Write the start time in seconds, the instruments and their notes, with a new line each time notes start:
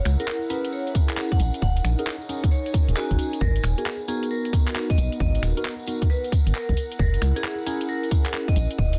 Already playing: analog synth pad E4 A#4 F#5
0.05 fm bass C#2, finger snap, open hi-hat, tambourine
0.20 tine electric piano C#4 E4 G#4 A#4, vibraphone A#4, closed hi-hat, tambourine
0.28 finger snap, clap, tambourine
0.42 tambourine
0.50 tine electric piano C#4 E4 G#4 A#4, vibraphone B4, open hi-hat, tambourine
0.65 closed hi-hat, tambourine
0.72 vibraphone C#5, tambourine
0.87 closed hi-hat, tambourine
0.95 tine electric piano C#4 E4 G#4 A#4, kick, open hi-hat, tambourine
1.09 clap, closed hi-hat, tambourine
1.17 clap, tambourine
1.32 vibraphone F#5, kick, closed hi-hat, tambourine
1.39 fm bass A#1, open hi-hat, tambourine
1.54 closed hi-hat, tambourine
1.62 fm bass D#1, analog synth pad D#4, vibraphone F#5, kick, tambourine
1.76 open hi-hat, tambourine
1.84 fm bass A#1, finger snap, open hi-hat, tambourine
1.94 analog synth pad C#5
1.98 tine electric piano C#4 D#4 G#4 A#4, closed hi-hat, tambourine
2.07 clap, tambourine
2.22 tambourine
2.29 tine electric piano C#4 D#4 G#4 A#4, open hi-hat, tambourine
2.44 analog synth pad G#5, kick, closed hi-hat, tambourine
2.51 vibraphone C#5, tambourine
2.66 closed hi-hat, tambourine
2.74 tine electric piano C#4 D#4 G#4 A#4, kick, open hi-hat, tambourine
2.88 fm bass D#1, closed hi-hat, tambourine
2.96 tine electric piano C#4 D#4 G#4 A#4, vibraphone F#4, clap, tambourine
3.11 fm bass G#1, kick, closed hi-hat, tambourine
3.19 open hi-hat, tambourine
3.33 closed hi-hat, tambourine
3.40 fm bass G#1, analog synth pad B3, vibraphone A#4, kick, tambourine
3.56 closed hi-hat, tambourine
3.63 fm bass D#1, finger snap, open hi-hat, tambourine
3.78 tine electric piano B3 D#4 F#4 A#4, vibraphone G#4, analog synth pad A#4, closed hi-hat, tambourine
3.86 finger snap, clap, tambourine
4.01 tambourine
4.08 tine electric piano B3 D#4 F#4 A#4, vibraphone G#4, open hi-hat, tambourine
4.23 closed hi-hat, tambourine
4.31 vibraphone A#4, tambourine
4.45 closed hi-hat, tambourine
4.50 tine electric piano B3 D#4 F#4 A#4, analog synth pad F#5, kick, open hi-hat, tambourine
4.67 clap, closed hi-hat, tambourine
4.75 clap, tambourine
4.90 vibraphone D#5, kick, closed hi-hat, tambourine
4.97 fm bass B1, open hi-hat, tambourine
5.12 closed hi-hat, tambourine
5.20 fm bass G#1, vibraphone D#5, kick, tambourine
5.34 open hi-hat, tambourine
5.43 fm bass D#1, finger snap, open hi-hat, tambourine
5.57 tine electric piano B3 D#4 F#4 A#4, closed hi-hat, tambourine
5.65 clap, tambourine
5.79 tambourine
5.86 tine electric piano B3 D#4 F#4 A#4, open hi-hat, tambourine
6.02 kick, closed hi-hat, tambourine
6.10 vibraphone B4, tambourine
6.24 closed hi-hat, tambourine
6.32 kick, open hi-hat, tambourine
6.47 fm bass G#1, closed hi-hat, tambourine
6.55 vibraphone A#4, clap, tambourine
6.69 fm bass B1, kick, closed hi-hat, tambourine
6.77 analog synth pad E4, open hi-hat, tambourine
6.92 closed hi-hat, tambourine
6.99 fm bass F#1, vibraphone A#4, kick, tambourine
7.13 closed hi-hat, tambourine
7.22 fm bass C#2, finger snap, open hi-hat, tambourine
7.36 tine electric piano C#4 E4 G#4 A#4, vibraphone G#4, closed hi-hat, tambourine
7.44 finger snap, clap, tambourine
7.58 tambourine
7.67 tine electric piano C#4 E4 G#4 A#4, vibraphone G#4, open hi-hat, tambourine
7.81 closed hi-hat, tambourine
7.89 vibraphone A#4, tambourine
8.03 closed hi-hat, tambourine
8.11 tine electric piano C#4 E4 G#4 A#4, kick, open hi-hat, tambourine
8.26 clap, closed hi-hat, tambourine
8.34 clap, tambourine
8.48 vibraphone D#5, kick, closed hi-hat, tambourine
8.56 fm bass A#1, open hi-hat, tambourine
8.71 closed hi-hat, tambourine
8.78 fm bass D#1, analog synth pad D#4, vibraphone D#5, kick, tambourine
8.93 open hi-hat, tambourine